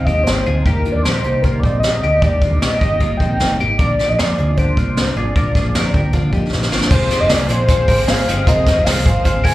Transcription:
0.05 D#2 C4 D#4 G4 D#5, kick, closed hi-hat
0.09 G#3
0.23 G#1 D#3 C5, snare, closed hi-hat
0.28 G#3 C4 D#4
0.46 D2 G#3 C4 D#4 F4 G#4, closed hi-hat
0.62 D#2 D#3 G3 A#4, kick, closed hi-hat
0.66 A#3 D#4 G4
0.85 G3 A#3 D4 D#4 F4, closed hi-hat
0.92 D#2 D5
1.03 A#1 D#3 G3 A#3 D#4 G4 C5, snare, closed hi-hat
1.07 D#4
1.24 C2 G3 A#3 D#4 G4, closed hi-hat
1.42 D#3 G3 A#3 F4 A#4, kick, closed hi-hat
1.46 D#4
1.59 A#1 D5
1.63 G3 A#3 C4 D#4, kick, closed hi-hat
1.79 D#3 D#5, closed hi-hat
1.84 G3 A#3 D#4, snare
2.03 D2 G3 A#3 D#4 G4, closed hi-hat
2.21 D#2 D#3 G3 A#3 D#4 G4 D5, kick, closed hi-hat
2.41 G3 A#3 D4 D#4 F4, kick, closed hi-hat
2.50 D#2
2.59 A#1 D#3 G3 G4 D#5, snare, closed hi-hat
2.63 A#3 D#4
2.79 G1 A#3 D#4 G4 D#5, kick, closed hi-hat
2.83 G3
3.00 D#3 G3 A#3 D#4 F4, kick, closed hi-hat
3.17 A#1 D#4 G5, kick, closed hi-hat
3.21 G3 A#3 C4
3.39 F1 D#3 G3 A#3 D#4, snare, closed hi-hat
3.59 G#1 G3 A#3 D#4 G4, closed hi-hat
3.78 A#1 A#2 D3 F3 A#3 D4 F4 A#4 D5, kick, closed hi-hat
3.99 F3 A#3 D4 D#4 G4, snare, closed hi-hat
4.08 A#1 D#5
4.18 F2 D3 A#3 D4 F4 G#4 D5, snare, closed hi-hat
4.38 D2 F3 A#3 D4 F4 G#4, closed hi-hat
4.57 A#2 D3 F3 A#3 D4 G4 C5, kick, closed hi-hat
4.77 C2 F3 A#3 D4 F4, kick, closed hi-hat
4.96 D3 F3 A#3 D4, snare, closed hi-hat
5.16 G#1 F3 A#3 D4 F4 G#4 D5, closed hi-hat
5.36 A#1 A#2 D3 F3 A#3 D4 F4 A#4, kick, closed hi-hat
5.55 F3 A#3 D4 F4 G#4, kick, snare, closed hi-hat
5.65 A#1
5.74 F2 D3 F3 A#3 D4 F4 A#4, snare, closed hi-hat
5.94 D2 F3 A#3 D4 G4 A#4, kick, closed hi-hat
6.13 A#2 D3 F3 A#3 D4 F4, kick, closed hi-hat
6.33 F2 F3 A#3 D4 D#4 G4, kick, closed hi-hat
6.52 A#1 D3 F3 A#3 D4, snare
6.62 snare
6.72 G1 F3 A#3 D4 F4, snare
6.81 snare
6.90 F1 F3 C4 F4 G#4 C5, kick, crash
7.08 C4 D#4 F4 G4 G#4 C5, snare, hi-hat pedal, open hi-hat
7.20 F1 D#5
7.28 C2 C4 F4 G#4 A#4 D5, snare, hi-hat pedal, open hi-hat
7.48 A#1 C4 F4 G#4 C5, hi-hat pedal, open hi-hat
7.68 C4 F4 G#4 C5, kick, hi-hat pedal, open hi-hat
7.88 G#1 C4 F4 G4 G#4 A#4 C5, kick, hi-hat pedal, open hi-hat
8.07 C4 F4 G#4 C5 F5, snare, hi-hat pedal, open hi-hat
8.27 G1 C4 D#4 F4 G4 G#4 C5, hi-hat pedal, open hi-hat
8.46 F1 C4 F4 G#4 A#4 D#5, kick, hi-hat pedal, open hi-hat
8.67 C4 D#4 F4 G4 G#4 C5, kick, snare, hi-hat pedal, open hi-hat
8.77 F1
8.84 C2 C4 F4 G#4 C5 F5, snare, hi-hat pedal, open hi-hat
9.05 G#1 C4 F4 G#4 C5, kick, hi-hat pedal, open hi-hat
9.24 C4 F4 G#4 C5 F5, kick, hi-hat pedal, open hi-hat
9.43 C2 C4 F4 G4 G#4 A#4 C5 G#5, kick, hi-hat pedal, open hi-hat

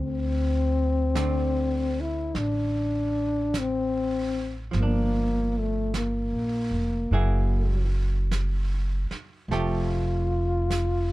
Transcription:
Already playing: D2
0.00 C4
1.15 D3 A3 C4, brush sweep, snare, hi-hat pedal
2.00 E4
2.35 A1 D4, brush sweep, snare
3.54 brush sweep, snare, hi-hat pedal
3.58 C4
4.71 G1 F3, brush sweep, snare
4.79 A#3 D4
5.59 A3
5.94 A#3, brush sweep, snare, hi-hat pedal
6.32 A#1
6.71 F1
7.11 F#1 F#3 A#3 E4 G#4, brush sweep
8.31 brush sweep, snare, hi-hat pedal
9.11 muted upright bass stroke, snare
9.48 F1 F3 A3, brush sweep, snare
9.53 F4 G4
10.70 brush sweep, snare, hi-hat pedal

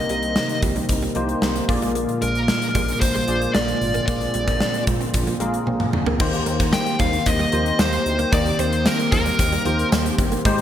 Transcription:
Already playing: C3 D#3 G3 A#3 C4 D#4 G4 A#4 C5 D#5
0.09 C2 G3, closed hi-hat
0.23 closed hi-hat
0.36 muted clean electric guitar stroke, snare
0.49 closed hi-hat
0.62 C2 F3, kick, closed hi-hat
0.76 G3, closed hi-hat
0.89 C2, muted clean electric guitar stroke, kick, closed hi-hat
1.02 G3, closed hi-hat
1.15 C2 F3 A#3 D#4 G4 C5, closed hi-hat
1.29 closed hi-hat
1.42 C2 G3, snare
1.56 closed hi-hat
1.68 A#1 A#2 D3 F3 G#3 A#3 F4 G#4 D5, muted clean electric guitar stroke, kick, open hi-hat
1.82 G#3, closed hi-hat
1.95 A#3, closed hi-hat
2.09 muted clean electric guitar stroke, closed hi-hat
2.22 A#1 G#3 A#4, closed hi-hat
2.35 closed hi-hat
2.48 snare
2.62 closed hi-hat
2.75 A#1 G3, kick, closed hi-hat
2.88 closed hi-hat
3.01 A#1 C5, muted clean electric guitar stroke, kick, closed hi-hat
3.15 G3, closed hi-hat
3.27 A#1 F3 A#3 F4 G#4 D5, closed hi-hat
3.42 closed hi-hat
3.54 A#1 G#3 D5, snare
3.68 muted clean electric guitar stroke, closed hi-hat
3.81 G#1 A#2 C4, open hi-hat
3.94 A#3, closed hi-hat
4.07 A#1 A#3 F4 G#4 D5, kick, closed hi-hat
4.21 muted clean electric guitar stroke, closed hi-hat
4.34 A#1 G3, closed hi-hat
4.48 kick, closed hi-hat
4.60 muted clean electric guitar stroke, snare
4.74 closed hi-hat
4.87 A#1 G#3, kick, closed hi-hat
5.01 C4, closed hi-hat
5.14 A#1, muted clean electric guitar stroke, kick, closed hi-hat
5.27 A#3, closed hi-hat
5.40 A#1 G#3 A#3 F4 G#4 A#4, closed hi-hat
5.54 closed hi-hat
5.67 A#1 C4, high tom
5.80 mid tom
5.93 D2, muted clean electric guitar stroke, mid tom
6.06 A#3, floor tom
6.20 D#2 D#3 A#3 C4 D#4 G4 C5, kick, crash
6.33 muted clean electric guitar stroke, closed hi-hat
6.46 D#2 A#3, closed hi-hat
6.60 kick, closed hi-hat
6.73 G5, snare, tambourine
6.86 closed hi-hat
6.99 D#2 G3 F5, kick, closed hi-hat
7.13 closed hi-hat
7.26 D#2 D#5, muted clean electric guitar stroke, kick, closed hi-hat
7.39 G3, closed hi-hat
7.52 D#2 F3 A#3 D#4 G4 C5, closed hi-hat
7.66 closed hi-hat
7.79 D#2 G3 C5, snare, tambourine
7.93 muted clean electric guitar stroke, closed hi-hat
8.06 D2, closed hi-hat
8.19 A#3, closed hi-hat
8.32 D#2 D#3 A#3 D#4 G4 D5 D#5, kick, closed hi-hat
8.46 muted clean electric guitar stroke, closed hi-hat
8.59 D#2 C4 C5, closed hi-hat
8.72 closed hi-hat
8.86 A#4, muted clean electric guitar stroke, snare, tambourine
8.99 closed hi-hat
9.12 D#2 F3 A#4, kick, closed hi-hat
9.26 G3, closed hi-hat
9.39 D#2, muted clean electric guitar stroke, kick, closed hi-hat
9.52 G3, closed hi-hat
9.65 D#2 F3 A#3 D#4 G4 C5, closed hi-hat
9.79 closed hi-hat
9.92 D#2 G3, snare, tambourine
10.06 closed hi-hat
10.18 G1, muted clean electric guitar stroke, kick, closed hi-hat
10.32 A#3, closed hi-hat
10.45 G#1 G#2 D#3 G#3 D#4 G4 C5, kick, closed hi-hat
10.58 closed hi-hat

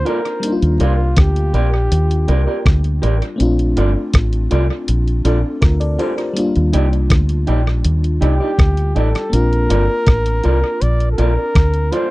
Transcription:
Already playing: A#3 C4 D4 D#4 F4
0.05 F4 A4 A#4 D5, closed hi-hat
0.26 closed hi-hat
0.40 G3 A#3 D4, closed hi-hat
0.46 D#4
0.52 F4
0.62 D#2, closed hi-hat
0.80 C2 F4 G4 A#4 D5, closed hi-hat
1.16 D2 G4, kick, cross-stick, closed hi-hat
1.36 closed hi-hat
1.54 A#1 G4 A#4 D5, closed hi-hat
1.92 D#2, closed hi-hat
2.11 closed hi-hat
2.28 C2 G4 A#4 D5, closed hi-hat
2.47 G4 A#4 D5
2.66 D2, kick, cross-stick, closed hi-hat
2.84 closed hi-hat
3.02 A1 G4 A#4 D5, closed hi-hat
3.22 closed hi-hat
3.36 A3 C4, closed hi-hat
3.40 A#1 D4 F4
3.59 closed hi-hat
3.77 G1 F4 A4 D5, closed hi-hat
4.13 A1, kick, cross-stick, closed hi-hat
4.33 closed hi-hat
4.51 C2 F4 A4 D5, closed hi-hat
4.88 A#1, closed hi-hat
5.08 closed hi-hat
5.25 A#1 D4 F4 A4 D5, closed hi-hat
5.61 D2 F4 A#4, kick, cross-stick, closed hi-hat
5.80 A4 D5, closed hi-hat
5.99 F4 G4 A4 C5 D5, closed hi-hat
6.17 F4 A#4, closed hi-hat
6.33 G3 A#3 D4, closed hi-hat
6.39 F4
6.56 D#2, closed hi-hat
6.73 C2 D#4 G4 D5, closed hi-hat
6.93 closed hi-hat
7.10 D2, kick, cross-stick, closed hi-hat
7.29 closed hi-hat
7.47 A#1 D#4 G4 D5, closed hi-hat
7.67 cross-stick
7.84 D#2, closed hi-hat
8.04 closed hi-hat
8.21 C2 D#4 G4 D5, closed hi-hat
8.40 D#4 G4 D5
8.59 D2, kick, cross-stick, closed hi-hat
8.77 closed hi-hat
8.95 A1 D#4 G4 A4 D5, closed hi-hat
9.15 cross-stick, closed hi-hat
9.30 A#1 A#3 C4 D4 A#4, closed hi-hat
9.35 F4
9.53 closed hi-hat
9.70 G1 F4 A4 D5, closed hi-hat
10.07 A1, kick, cross-stick, closed hi-hat
10.26 closed hi-hat
10.44 C2 F4 A4 D5, closed hi-hat
10.81 A#1 D5, closed hi-hat
11.00 closed hi-hat
11.12 A4
11.18 A#1 F4 A4 A#4 D5, closed hi-hat
11.55 D2, kick, cross-stick, closed hi-hat
11.74 closed hi-hat
11.92 F4 A4 C5 D5, closed hi-hat

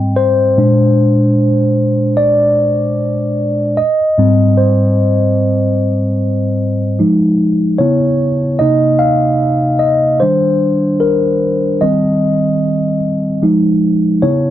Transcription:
Already playing: G#2 G3 C4 G5
0.16 C5
0.57 A#2 G#3 D4
2.17 D5
3.77 D#5
4.18 G#2 G3 C4
4.57 C5
6.99 F3 G#3 D#4
7.78 C#3 B3 E4 C#5
8.59 C3 A#3 D#4 D#5
8.99 F5
9.79 D#5
10.20 D#3 G3 D4 C5
11.00 A#4
11.81 D#3 G3 C4 D#5
13.42 F3 G#3 D#4
14.22 C#3 B3 E4 C#5

